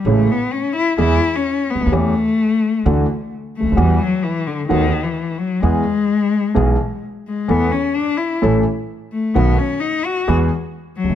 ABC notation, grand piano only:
X:1
M:4/4
L:1/16
Q:1/4=129
K:A
V:1 name="Grand piano" clef=bass
[A,,,A,,C,G,A,E]2 z6 [E,,E,G,B,G]2 z4 z/2 C,,/2 D,,/2 ^D,,/2 | [E,,E,A,C=G]2 z6 [D,,D,E,A,DF]2 z4 z/2 C,,/2 D,,/2 ^D,,/2 | [E,,E,=G,B,F]2 z6 [^D,,^D,A,B,F]2 z6 | [E,,E,G,B,G]2 z6 [B,,,B,,E,G,B,G]2 z6 |
[E,,E,A,B,A]2 z6 [A,,,A,,E,A,CA]2 z6 | [B,,,B,,^D,A,B,F]2 z6 [E,,E,G,B,G]2 z4 z/2 C,,/2 =D,,/2 z/2 |]